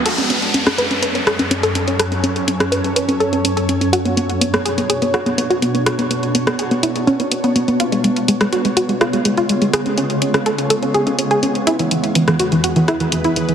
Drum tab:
CC |x---------------|----------------|----------------|----------------|
HH |xxxxxxxxxxxxxxxx|xxxxxxxxxxxxxxxx|xxxxxxxxxxxxxxxx|xxxxxxxxxxxxxxxx|
SD |-----r----r-----|r----r----------|-----r----r-----|r----r----------|

CC |----------------|----------------|----------------|
HH |xxxxxxxxxxxxxxxx|xxxxxxxxxxxxxxxx|xxxxxxxxxxxxxxxx|
SD |-----r----r-----|r----r----------|-----r----r-----|